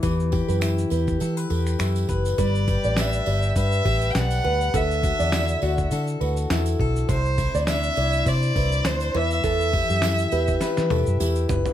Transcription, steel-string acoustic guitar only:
X:1
M:4/4
L:1/16
Q:"Swing 16ths" 1/4=102
K:Em
V:1 name="Steel-string acoustic guitar"
E,2 G2 E2 G2 A B G2 E2 B2 | G,2 G2 D2 G2 B2 G2 D2 B2 | D,2 F2 E2 F2 A2 F2 E2 A2 | C,2 E2 D2 E2 c2 E2 D2 E,2 |
E,2 G2 E2 G2 B2 G2 E2 B2 |]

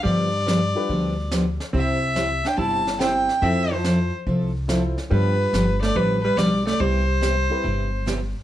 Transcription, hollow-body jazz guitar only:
X:1
M:4/4
L:1/8
Q:"Swing" 1/4=142
K:C
V:1 name="Hollow-body jazz guitar" clef=bass
G,6 z2 | C3 D E2 C2 | C F,2 z4 z | G,3 A, G, G, G, A, |
G,6 z2 |]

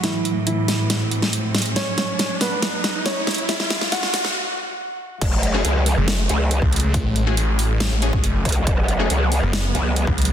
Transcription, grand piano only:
X:1
M:4/4
L:1/16
Q:1/4=139
K:F#m
V:1 name="Grand piano"
[E,E]3 z [E,E]12 | [Cc]6 [B,B]6 [Cc]3 z | [Ee]3 z [Ff]12 | z16 |
z16 | z16 |]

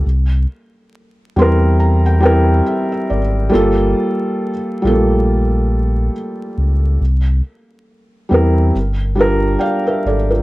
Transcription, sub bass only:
X:1
M:4/4
L:1/8
Q:"Swing 16ths" 1/4=69
K:Gdor
V:1 name="Sub bass" clef=bass
C,, z2 E,,3 z _A,,, | G,,, z2 B,,,3 z ^C,, | C,, z2 E,, G,,,2 z _A,,, |]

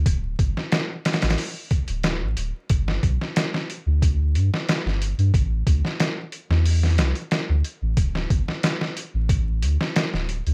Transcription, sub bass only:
X:1
M:4/4
L:1/16
Q:1/4=91
K:Gmix
V:1 name="Sub bass" clef=bass
D,,,2 G,,, z4 A,,, z3 D,,,2 A,,, D,,, z | G,,,2 B,,, z4 D,,3 G,, z2 G,,,2 G,, | A,,,2 D,, z4 E,,3 C,, z2 D,, z A,,, | D,,,2 G,,, z4 A,,,3 D,, z2 D,,,2 D,, |]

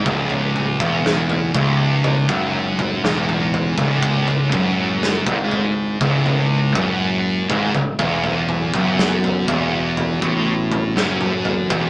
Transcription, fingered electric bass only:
X:1
M:4/4
L:1/16
Q:1/4=60
K:C#m
V:1 name="Fingered electric bass" clef=bass
C,,,3 E,,,3 C,,,3 F,,,3 E,,,3 C,,,- | C,,,2 F,,,3 G,,,3 C,,,3 F,,,3 G,,, C,,, | E,,,3 F,,,3 E,,,3 A,,,3 F,,,3 E,,, |]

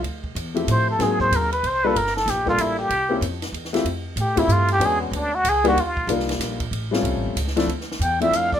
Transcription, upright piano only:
X:1
M:3/4
L:1/8
Q:"Swing" 1/4=188
K:Dm
V:1 name="Upright piano"
z3 [F,A,CEG]3 | [^F,^A,^B,^D^G]3 z2 [=G,A,=D=F=A] | z3 [G,B,DFA]3 | z [B,C_DEG] z3 [A,CEFG] |
z3 [A,CEFG]3 | [^G,=B,^CD^F]3 z2 [=G,_B,D_EG] | z2 [G,B,D_EF]3 z | z [G,A,^B,^C^E]3 z [^E,A,B,D=E] |
z3 [F,A,CDE]3 |]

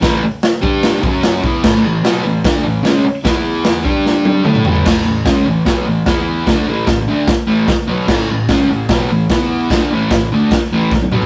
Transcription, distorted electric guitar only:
X:1
M:4/4
L:1/8
Q:1/4=149
K:Amix
V:1 name="Distorted electric guitar" clef=bass
[A,,E,A,] z2 [G,DG]2 [F,CF]2 [E,B,E] | [A,,E,A,] [A,,E,] [B,,F,B,] [A,,E,] [D,A,D] [A,,E,] [C,^G,C] z | [E,B,E]3 [G,DG]3 [A,EA] [A,,E,A,] | [K:A] [A,,E,A,] [A,,E,] [C,G,C] [A,,E,] [B,,F,B,] [A,,E,] [E,B,E]2 |
[D,A,D] [A,,E,A,] [A,,E,] [D,A,D] z [A,,E,A,] z [B,,F,B,] | [A,,E,A,] [A,,E,] [C,G,C] [A,,E,] [B,,F,B,] [A,,E,] [E,B,E]2 | [D,A,D] [A,,E,A,] [A,,E,] [D,A,D] z [A,,E,A,] z [B,,F,B,] |]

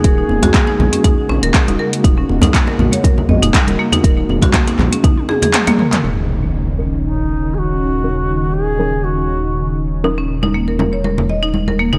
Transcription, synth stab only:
X:1
M:4/4
L:1/8
Q:"Swing 16ths" 1/4=120
K:Ebm
V:1 name="Synth stab"
z8 | z8 | z8 | [G,DEFB]3 [F,G,DEB]4- [F,G,DEB] |
[F,G,DEB]3 [F,G,DEB]4- [F,G,DEB] | [G,DEFB]3 [G,DEFB]4- [G,DEFB] |]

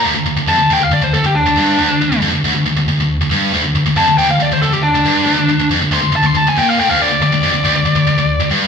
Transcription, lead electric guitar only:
X:1
M:4/4
L:1/16
Q:1/4=138
K:Dm
V:1 name="Lead electric guitar"
z4 a2 g f d c A G D4- | D4 z12 | z4 a2 g f d c A G D4- | D4 z2 c'2 a c' a ^g =g f g f |
d2 d12 z2 |]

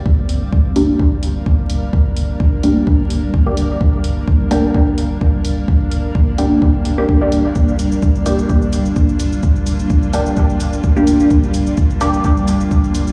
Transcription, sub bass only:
X:1
M:4/4
L:1/8
Q:"Swing 16ths" 1/4=128
K:Gm
V:1 name="Sub bass" clef=bass
z G,,, z G,,, z G,,, z G,,, | z G,,, z G,,, z G,,, z G,,, | z G,,, z G,,, z G,,, z G,,, | z G,,, z G,,, z G,,, z G,,, |
z G,,, z G,,, z G,,, z G,,, | z G,,, z G,,, z G,,, z G,,, | z G,,, z G,,, z G,,, z G,,, |]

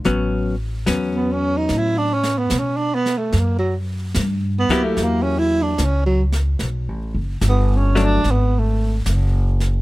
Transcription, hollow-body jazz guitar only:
X:1
M:4/4
L:1/8
Q:"Swing" 1/4=73
K:A
V:1 name="Hollow-body jazz guitar"
[F,B,C] z [F,B,C]3 z3 | z3 [F,^A,E=G]3 z2 | z3 [F,A,D] z4 |]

